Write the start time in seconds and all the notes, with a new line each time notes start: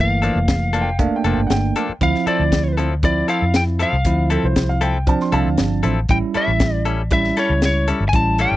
Already playing: G1 E3 A3 A#3
0.01 F5
0.22 F3 A#3 D4 A4, closed hi-hat
0.36 F1
0.48 kick, snare, closed hi-hat
0.73 F3 A#3 D4 A4, closed hi-hat
0.81 G5
0.99 A3 A#3 D4 F5, kick, closed hi-hat
1.16 G5
1.24 F1 F3 A#3 D4 A4, closed hi-hat
1.33 G5
1.37 G1
1.47 G1 F#5, snare, closed hi-hat
1.51 G5
1.76 F3 A#3 D4 A4, closed hi-hat
1.89 muted fingered electric bass stroke
2.01 D2 F3 C4 E4 F5, kick, closed hi-hat
2.15 snare
2.26 F3 C4 E4 A4 D5, muted fingered electric bass stroke, closed hi-hat
2.40 D2
2.52 kick, snare, closed hi-hat
2.77 F3 C4 E4 A4, closed hi-hat
3.03 F3 C4 E4 D5, kick, closed hi-hat
3.28 F3 C4 E4 A4 F5, closed hi-hat
3.42 F2
3.54 G5, snare, closed hi-hat
3.79 F3 C4 E4 A4 F5, closed hi-hat
3.93 C2
4.05 D2 F3 C4 E4, kick, closed hi-hat
4.30 F3 C4 E4 A4, closed hi-hat
4.44 C2 C5
4.56 kick, snare, closed hi-hat
4.69 F5
4.81 F3 C4 E4 A4 G5, closed hi-hat
5.07 F3 C4 D4 A5, kick, closed hi-hat
5.20 C6, snare
5.32 C2 F3 C4 E4 A4 F5 A5, closed hi-hat
5.45 D2
5.58 G1, snare, closed hi-hat
5.83 A1 F3 C4 E4 A4, closed hi-hat
6.09 A1 G3 C#4 E4 G5, kick, closed hi-hat
6.34 G3 C#4 E4 A4 E5, muted fingered electric bass stroke, closed hi-hat
6.48 A1
6.60 kick, snare, closed hi-hat
6.85 G3 C#4 E4 A4, closed hi-hat
7.11 G3 C#4 E4 E5, kick, closed hi-hat
7.24 snare
7.37 G3 C#4 E4 A4 C#5, snare, closed hi-hat
7.50 C#2
7.62 C#5, snare, closed hi-hat
7.88 G3 C#4 E4 A4, closed hi-hat
8.00 G1
8.09 G#5, closed hi-hat
8.13 A1 G3 C#4 E4 A5, kick
8.38 G3 C#4 E4 A4 G5, closed hi-hat
8.51 G1